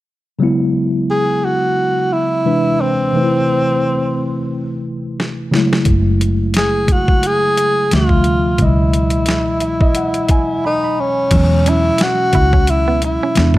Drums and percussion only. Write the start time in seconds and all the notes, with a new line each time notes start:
5.20 snare
5.54 snare
5.73 snare
5.85 kick, closed hi-hat
6.21 closed hi-hat
6.54 snare, closed hi-hat
6.88 kick, closed hi-hat
7.08 kick
7.23 closed hi-hat
7.57 closed hi-hat
7.91 snare, closed hi-hat
8.09 kick
8.24 closed hi-hat
8.58 kick, closed hi-hat
8.93 closed hi-hat
9.10 closed hi-hat
9.26 snare, closed hi-hat
9.60 closed hi-hat
9.81 kick
9.95 closed hi-hat
10.14 closed hi-hat
10.29 kick, closed hi-hat
11.31 kick, closed hi-hat, crash
11.66 closed hi-hat
11.98 snare, closed hi-hat
12.33 kick, closed hi-hat
12.53 kick
12.67 closed hi-hat
13.02 closed hi-hat
13.35 snare, closed hi-hat
13.54 kick